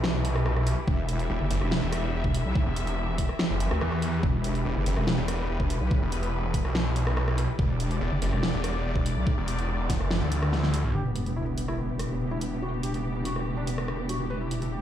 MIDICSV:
0, 0, Header, 1, 7, 480
1, 0, Start_track
1, 0, Key_signature, 1, "minor"
1, 0, Tempo, 419580
1, 1002, Time_signature, 4, 2, 24, 8
1, 16950, End_track
2, 0, Start_track
2, 0, Title_t, "String section"
2, 0, Program_c, 0, 48
2, 0, Note_on_c, 0, 52, 81
2, 0, Note_on_c, 0, 64, 75
2, 0, Note_on_c, 0, 67, 80
2, 0, Note_on_c, 0, 71, 89
2, 988, Note_off_c, 0, 71, 0
2, 1002, Note_on_c, 0, 76, 91
2, 4828, Note_off_c, 0, 76, 0
2, 4843, Note_on_c, 0, 71, 93
2, 8669, Note_off_c, 0, 71, 0
2, 8682, Note_on_c, 0, 74, 93
2, 12476, Note_off_c, 0, 52, 0
2, 12476, Note_off_c, 0, 64, 0
2, 12476, Note_off_c, 0, 67, 0
2, 12508, Note_off_c, 0, 74, 0
2, 12520, Note_on_c, 0, 52, 73
2, 12520, Note_on_c, 0, 59, 68
2, 12520, Note_on_c, 0, 62, 70
2, 12521, Note_on_c, 0, 67, 82
2, 16950, Note_off_c, 0, 52, 0
2, 16950, Note_off_c, 0, 59, 0
2, 16950, Note_off_c, 0, 62, 0
2, 16950, Note_off_c, 0, 67, 0
2, 16950, End_track
3, 0, Start_track
3, 0, Title_t, "Felt piano"
3, 0, Program_c, 1, 0
3, 12523, Note_on_c, 1, 67, 88
3, 12585, Note_off_c, 1, 67, 0
3, 12644, Note_on_c, 1, 59, 57
3, 12704, Note_off_c, 1, 59, 0
3, 12762, Note_on_c, 1, 59, 56
3, 12824, Note_off_c, 1, 59, 0
3, 12884, Note_on_c, 1, 59, 60
3, 12944, Note_off_c, 1, 59, 0
3, 13001, Note_on_c, 1, 64, 79
3, 13064, Note_off_c, 1, 64, 0
3, 13124, Note_on_c, 1, 59, 56
3, 13184, Note_off_c, 1, 59, 0
3, 13240, Note_on_c, 1, 59, 58
3, 13303, Note_off_c, 1, 59, 0
3, 13364, Note_on_c, 1, 64, 85
3, 13423, Note_off_c, 1, 64, 0
3, 13480, Note_on_c, 1, 59, 60
3, 13543, Note_off_c, 1, 59, 0
3, 13606, Note_on_c, 1, 59, 56
3, 13664, Note_off_c, 1, 59, 0
3, 13845, Note_on_c, 1, 59, 59
3, 13904, Note_off_c, 1, 59, 0
3, 13961, Note_on_c, 1, 59, 57
3, 14024, Note_off_c, 1, 59, 0
3, 14085, Note_on_c, 1, 64, 85
3, 14144, Note_off_c, 1, 64, 0
3, 14201, Note_on_c, 1, 59, 57
3, 14264, Note_off_c, 1, 59, 0
3, 14326, Note_on_c, 1, 59, 57
3, 14385, Note_off_c, 1, 59, 0
3, 14442, Note_on_c, 1, 66, 83
3, 14504, Note_off_c, 1, 66, 0
3, 14566, Note_on_c, 1, 59, 58
3, 14624, Note_off_c, 1, 59, 0
3, 14681, Note_on_c, 1, 67, 83
3, 14744, Note_off_c, 1, 67, 0
3, 14806, Note_on_c, 1, 59, 59
3, 14865, Note_off_c, 1, 59, 0
3, 14923, Note_on_c, 1, 59, 53
3, 14985, Note_off_c, 1, 59, 0
3, 15046, Note_on_c, 1, 59, 58
3, 15105, Note_off_c, 1, 59, 0
3, 15162, Note_on_c, 1, 66, 82
3, 15225, Note_off_c, 1, 66, 0
3, 15285, Note_on_c, 1, 59, 60
3, 15344, Note_off_c, 1, 59, 0
3, 15402, Note_on_c, 1, 59, 59
3, 15464, Note_off_c, 1, 59, 0
3, 15524, Note_on_c, 1, 62, 87
3, 15584, Note_off_c, 1, 62, 0
3, 15642, Note_on_c, 1, 59, 58
3, 15704, Note_off_c, 1, 59, 0
3, 15765, Note_on_c, 1, 59, 61
3, 15824, Note_off_c, 1, 59, 0
3, 16006, Note_on_c, 1, 59, 59
3, 16065, Note_off_c, 1, 59, 0
3, 16123, Note_on_c, 1, 66, 78
3, 16185, Note_off_c, 1, 66, 0
3, 16246, Note_on_c, 1, 59, 57
3, 16304, Note_off_c, 1, 59, 0
3, 16362, Note_on_c, 1, 71, 95
3, 16424, Note_off_c, 1, 71, 0
3, 16484, Note_on_c, 1, 64, 61
3, 16544, Note_off_c, 1, 64, 0
3, 16601, Note_on_c, 1, 64, 58
3, 16664, Note_off_c, 1, 64, 0
3, 16725, Note_on_c, 1, 64, 60
3, 16784, Note_off_c, 1, 64, 0
3, 16842, Note_on_c, 1, 67, 82
3, 16904, Note_off_c, 1, 67, 0
3, 16950, End_track
4, 0, Start_track
4, 0, Title_t, "Detuned saw bass"
4, 0, Program_c, 2, 39
4, 0, Note_on_c, 2, 35, 102
4, 865, Note_off_c, 2, 35, 0
4, 1482, Note_on_c, 2, 28, 100
4, 1586, Note_off_c, 2, 28, 0
4, 1721, Note_on_c, 2, 30, 97
4, 1825, Note_off_c, 2, 30, 0
4, 2086, Note_on_c, 2, 28, 98
4, 2423, Note_off_c, 2, 28, 0
4, 2442, Note_on_c, 2, 28, 101
4, 2546, Note_off_c, 2, 28, 0
4, 3045, Note_on_c, 2, 28, 98
4, 3746, Note_off_c, 2, 28, 0
4, 4006, Note_on_c, 2, 30, 95
4, 4226, Note_off_c, 2, 30, 0
4, 4362, Note_on_c, 2, 40, 102
4, 4823, Note_off_c, 2, 40, 0
4, 5322, Note_on_c, 2, 28, 97
4, 5426, Note_off_c, 2, 28, 0
4, 5562, Note_on_c, 2, 30, 95
4, 5666, Note_off_c, 2, 30, 0
4, 5926, Note_on_c, 2, 28, 98
4, 6264, Note_off_c, 2, 28, 0
4, 6282, Note_on_c, 2, 28, 101
4, 6386, Note_off_c, 2, 28, 0
4, 6886, Note_on_c, 2, 28, 98
4, 7586, Note_off_c, 2, 28, 0
4, 7605, Note_on_c, 2, 35, 101
4, 8546, Note_off_c, 2, 35, 0
4, 9163, Note_on_c, 2, 28, 99
4, 9266, Note_off_c, 2, 28, 0
4, 9402, Note_on_c, 2, 30, 97
4, 9506, Note_off_c, 2, 30, 0
4, 9766, Note_on_c, 2, 28, 100
4, 10104, Note_off_c, 2, 28, 0
4, 10122, Note_on_c, 2, 28, 99
4, 10226, Note_off_c, 2, 28, 0
4, 10725, Note_on_c, 2, 28, 97
4, 11425, Note_off_c, 2, 28, 0
4, 11444, Note_on_c, 2, 30, 106
4, 11665, Note_off_c, 2, 30, 0
4, 11685, Note_on_c, 2, 38, 93
4, 12385, Note_off_c, 2, 38, 0
4, 12404, Note_on_c, 2, 35, 98
4, 12503, Note_off_c, 2, 35, 0
4, 16950, End_track
5, 0, Start_track
5, 0, Title_t, "Wobble bass"
5, 0, Program_c, 3, 39
5, 1002, Note_on_c, 3, 28, 101
5, 1463, Note_off_c, 3, 28, 0
5, 1605, Note_on_c, 3, 30, 98
5, 1703, Note_off_c, 3, 30, 0
5, 1845, Note_on_c, 3, 28, 99
5, 2065, Note_off_c, 3, 28, 0
5, 2565, Note_on_c, 3, 28, 98
5, 2786, Note_off_c, 3, 28, 0
5, 2805, Note_on_c, 3, 35, 98
5, 3025, Note_off_c, 3, 35, 0
5, 4246, Note_on_c, 3, 38, 97
5, 4343, Note_off_c, 3, 38, 0
5, 4842, Note_on_c, 3, 28, 106
5, 5303, Note_off_c, 3, 28, 0
5, 5446, Note_on_c, 3, 30, 101
5, 5544, Note_off_c, 3, 30, 0
5, 5686, Note_on_c, 3, 28, 100
5, 5906, Note_off_c, 3, 28, 0
5, 6405, Note_on_c, 3, 28, 97
5, 6625, Note_off_c, 3, 28, 0
5, 6645, Note_on_c, 3, 35, 100
5, 6866, Note_off_c, 3, 35, 0
5, 8682, Note_on_c, 3, 28, 105
5, 9143, Note_off_c, 3, 28, 0
5, 9285, Note_on_c, 3, 30, 101
5, 9383, Note_off_c, 3, 30, 0
5, 9526, Note_on_c, 3, 28, 101
5, 9746, Note_off_c, 3, 28, 0
5, 10246, Note_on_c, 3, 28, 98
5, 10466, Note_off_c, 3, 28, 0
5, 10486, Note_on_c, 3, 35, 100
5, 10706, Note_off_c, 3, 35, 0
5, 12521, Note_on_c, 3, 28, 89
5, 16950, Note_off_c, 3, 28, 0
5, 16950, End_track
6, 0, Start_track
6, 0, Title_t, "Sub drop"
6, 0, Program_c, 4, 103
6, 12522, Note_on_c, 4, 60, 69
6, 14442, Note_off_c, 4, 60, 0
6, 16950, End_track
7, 0, Start_track
7, 0, Title_t, "Drums"
7, 42, Note_on_c, 9, 38, 122
7, 157, Note_off_c, 9, 38, 0
7, 283, Note_on_c, 9, 42, 84
7, 397, Note_off_c, 9, 42, 0
7, 406, Note_on_c, 9, 37, 77
7, 521, Note_off_c, 9, 37, 0
7, 522, Note_on_c, 9, 37, 76
7, 637, Note_off_c, 9, 37, 0
7, 646, Note_on_c, 9, 37, 59
7, 761, Note_off_c, 9, 37, 0
7, 763, Note_on_c, 9, 42, 88
7, 877, Note_off_c, 9, 42, 0
7, 1001, Note_on_c, 9, 36, 126
7, 1116, Note_off_c, 9, 36, 0
7, 1242, Note_on_c, 9, 42, 81
7, 1357, Note_off_c, 9, 42, 0
7, 1366, Note_on_c, 9, 42, 39
7, 1480, Note_off_c, 9, 42, 0
7, 1723, Note_on_c, 9, 42, 84
7, 1837, Note_off_c, 9, 42, 0
7, 1845, Note_on_c, 9, 37, 49
7, 1960, Note_off_c, 9, 37, 0
7, 1962, Note_on_c, 9, 38, 127
7, 2076, Note_off_c, 9, 38, 0
7, 2202, Note_on_c, 9, 37, 60
7, 2202, Note_on_c, 9, 42, 83
7, 2316, Note_off_c, 9, 37, 0
7, 2316, Note_off_c, 9, 42, 0
7, 2565, Note_on_c, 9, 36, 66
7, 2680, Note_off_c, 9, 36, 0
7, 2683, Note_on_c, 9, 42, 83
7, 2797, Note_off_c, 9, 42, 0
7, 2922, Note_on_c, 9, 36, 127
7, 3036, Note_off_c, 9, 36, 0
7, 3162, Note_on_c, 9, 42, 81
7, 3277, Note_off_c, 9, 42, 0
7, 3286, Note_on_c, 9, 42, 38
7, 3401, Note_off_c, 9, 42, 0
7, 3642, Note_on_c, 9, 36, 65
7, 3642, Note_on_c, 9, 42, 78
7, 3756, Note_off_c, 9, 36, 0
7, 3756, Note_off_c, 9, 42, 0
7, 3765, Note_on_c, 9, 37, 50
7, 3880, Note_off_c, 9, 37, 0
7, 3881, Note_on_c, 9, 38, 127
7, 3996, Note_off_c, 9, 38, 0
7, 4122, Note_on_c, 9, 42, 76
7, 4237, Note_off_c, 9, 42, 0
7, 4246, Note_on_c, 9, 37, 78
7, 4360, Note_off_c, 9, 37, 0
7, 4362, Note_on_c, 9, 37, 78
7, 4477, Note_off_c, 9, 37, 0
7, 4486, Note_on_c, 9, 37, 59
7, 4601, Note_off_c, 9, 37, 0
7, 4603, Note_on_c, 9, 42, 80
7, 4717, Note_off_c, 9, 42, 0
7, 4842, Note_on_c, 9, 36, 119
7, 4956, Note_off_c, 9, 36, 0
7, 5082, Note_on_c, 9, 42, 74
7, 5197, Note_off_c, 9, 42, 0
7, 5206, Note_on_c, 9, 42, 35
7, 5320, Note_off_c, 9, 42, 0
7, 5563, Note_on_c, 9, 42, 75
7, 5678, Note_off_c, 9, 42, 0
7, 5686, Note_on_c, 9, 37, 53
7, 5801, Note_off_c, 9, 37, 0
7, 5802, Note_on_c, 9, 38, 120
7, 5917, Note_off_c, 9, 38, 0
7, 6043, Note_on_c, 9, 37, 63
7, 6043, Note_on_c, 9, 42, 79
7, 6157, Note_off_c, 9, 37, 0
7, 6157, Note_off_c, 9, 42, 0
7, 6405, Note_on_c, 9, 36, 65
7, 6520, Note_off_c, 9, 36, 0
7, 6522, Note_on_c, 9, 42, 76
7, 6637, Note_off_c, 9, 42, 0
7, 6762, Note_on_c, 9, 36, 123
7, 6876, Note_off_c, 9, 36, 0
7, 7003, Note_on_c, 9, 42, 75
7, 7117, Note_off_c, 9, 42, 0
7, 7126, Note_on_c, 9, 42, 37
7, 7241, Note_off_c, 9, 42, 0
7, 7482, Note_on_c, 9, 36, 59
7, 7482, Note_on_c, 9, 42, 76
7, 7596, Note_off_c, 9, 36, 0
7, 7597, Note_off_c, 9, 42, 0
7, 7606, Note_on_c, 9, 37, 53
7, 7720, Note_off_c, 9, 37, 0
7, 7722, Note_on_c, 9, 38, 115
7, 7837, Note_off_c, 9, 38, 0
7, 7962, Note_on_c, 9, 42, 74
7, 8077, Note_off_c, 9, 42, 0
7, 8086, Note_on_c, 9, 37, 84
7, 8201, Note_off_c, 9, 37, 0
7, 8203, Note_on_c, 9, 37, 83
7, 8317, Note_off_c, 9, 37, 0
7, 8326, Note_on_c, 9, 37, 65
7, 8441, Note_off_c, 9, 37, 0
7, 8442, Note_on_c, 9, 42, 74
7, 8557, Note_off_c, 9, 42, 0
7, 8682, Note_on_c, 9, 36, 118
7, 8796, Note_off_c, 9, 36, 0
7, 8923, Note_on_c, 9, 42, 75
7, 9037, Note_off_c, 9, 42, 0
7, 9047, Note_on_c, 9, 42, 37
7, 9161, Note_off_c, 9, 42, 0
7, 9403, Note_on_c, 9, 42, 79
7, 9518, Note_off_c, 9, 42, 0
7, 9527, Note_on_c, 9, 37, 52
7, 9642, Note_off_c, 9, 37, 0
7, 9643, Note_on_c, 9, 38, 119
7, 9758, Note_off_c, 9, 38, 0
7, 9884, Note_on_c, 9, 37, 66
7, 9884, Note_on_c, 9, 42, 76
7, 9998, Note_off_c, 9, 37, 0
7, 9998, Note_off_c, 9, 42, 0
7, 10245, Note_on_c, 9, 36, 62
7, 10360, Note_off_c, 9, 36, 0
7, 10363, Note_on_c, 9, 42, 81
7, 10478, Note_off_c, 9, 42, 0
7, 10602, Note_on_c, 9, 36, 118
7, 10716, Note_off_c, 9, 36, 0
7, 10843, Note_on_c, 9, 42, 81
7, 10958, Note_off_c, 9, 42, 0
7, 10966, Note_on_c, 9, 42, 38
7, 11081, Note_off_c, 9, 42, 0
7, 11322, Note_on_c, 9, 36, 59
7, 11322, Note_on_c, 9, 38, 60
7, 11322, Note_on_c, 9, 42, 83
7, 11436, Note_off_c, 9, 36, 0
7, 11436, Note_off_c, 9, 38, 0
7, 11436, Note_off_c, 9, 42, 0
7, 11445, Note_on_c, 9, 37, 52
7, 11559, Note_off_c, 9, 37, 0
7, 11562, Note_on_c, 9, 38, 114
7, 11676, Note_off_c, 9, 38, 0
7, 11803, Note_on_c, 9, 42, 82
7, 11917, Note_off_c, 9, 42, 0
7, 11926, Note_on_c, 9, 37, 81
7, 12041, Note_off_c, 9, 37, 0
7, 12043, Note_on_c, 9, 38, 63
7, 12158, Note_off_c, 9, 38, 0
7, 12166, Note_on_c, 9, 38, 61
7, 12280, Note_off_c, 9, 38, 0
7, 12283, Note_on_c, 9, 42, 83
7, 12397, Note_off_c, 9, 42, 0
7, 12406, Note_on_c, 9, 45, 85
7, 12521, Note_off_c, 9, 45, 0
7, 12762, Note_on_c, 9, 42, 76
7, 12877, Note_off_c, 9, 42, 0
7, 12886, Note_on_c, 9, 42, 34
7, 13000, Note_off_c, 9, 42, 0
7, 13242, Note_on_c, 9, 42, 77
7, 13357, Note_off_c, 9, 42, 0
7, 13366, Note_on_c, 9, 37, 45
7, 13481, Note_off_c, 9, 37, 0
7, 13722, Note_on_c, 9, 37, 55
7, 13722, Note_on_c, 9, 42, 74
7, 13836, Note_off_c, 9, 37, 0
7, 13836, Note_off_c, 9, 42, 0
7, 14201, Note_on_c, 9, 42, 76
7, 14316, Note_off_c, 9, 42, 0
7, 14682, Note_on_c, 9, 42, 76
7, 14796, Note_off_c, 9, 42, 0
7, 14805, Note_on_c, 9, 42, 35
7, 14920, Note_off_c, 9, 42, 0
7, 15162, Note_on_c, 9, 42, 75
7, 15276, Note_off_c, 9, 42, 0
7, 15285, Note_on_c, 9, 37, 43
7, 15400, Note_off_c, 9, 37, 0
7, 15642, Note_on_c, 9, 42, 78
7, 15757, Note_off_c, 9, 42, 0
7, 15765, Note_on_c, 9, 37, 68
7, 15879, Note_off_c, 9, 37, 0
7, 15882, Note_on_c, 9, 37, 69
7, 15996, Note_off_c, 9, 37, 0
7, 16121, Note_on_c, 9, 42, 76
7, 16236, Note_off_c, 9, 42, 0
7, 16601, Note_on_c, 9, 42, 75
7, 16716, Note_off_c, 9, 42, 0
7, 16725, Note_on_c, 9, 42, 35
7, 16839, Note_off_c, 9, 42, 0
7, 16950, End_track
0, 0, End_of_file